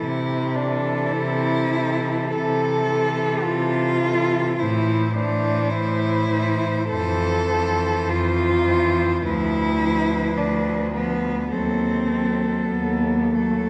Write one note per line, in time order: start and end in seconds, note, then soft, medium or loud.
0.00 0.99 C3 medium
0.00 0.57 E4 medium
0.56 1.69 E3 medium
0.56 1.13 D4 medium
0.56 1.69 A4 medium
1.11 2.18 C3 medium
1.11 2.31 E4 loud
1.71 2.87 E3 medium
1.71 2.87 A4 medium
2.31 3.33 C3 medium
2.31 3.45 A4 loud
2.88 4.00 E3 medium
2.88 4.01 A4 medium
3.44 4.47 C3 medium
3.44 4.61 F4 loud
4.03 4.59 E3 medium
4.03 4.59 A4 soft
4.59 5.58 A2 medium
4.59 5.13 E3 medium
4.59 5.16 E4 medium
4.59 5.14 C5 medium
5.14 6.27 E3 medium
5.14 5.71 D4 medium
5.14 6.29 C5 medium
5.70 6.77 A2 medium
5.70 6.88 E4 loud
6.30 6.91 E3 medium
6.30 6.90 C5 medium
6.89 7.95 F2 medium
6.89 7.50 E3 medium
6.89 8.11 A4 loud
6.89 7.49 C5 medium
7.51 8.65 E3 medium
7.51 8.65 C5 medium
8.08 9.10 F2 medium
8.08 9.25 F4 loud
8.67 9.23 E3 medium
8.67 9.23 C5 medium
9.23 10.23 D2 medium
9.23 9.79 F3 medium
9.23 10.39 E4 loud
9.23 9.78 B4 soft
9.79 10.92 F3 medium
9.79 10.91 B4 medium
10.37 11.38 D2 medium
10.37 10.94 D4 medium
10.94 11.49 F3 medium
10.94 11.53 B3 medium
10.94 11.50 B4 medium
11.50 12.56 D#2 medium
11.50 12.09 F#3 soft
11.50 12.70 C4 medium
11.50 12.09 A4 medium
12.10 13.31 F#3 medium
12.10 13.31 A4 medium
12.71 13.70 D#2 medium
12.71 13.35 B3 medium
13.34 13.70 F#3 soft
13.34 13.70 A3 medium
13.34 13.70 A4 soft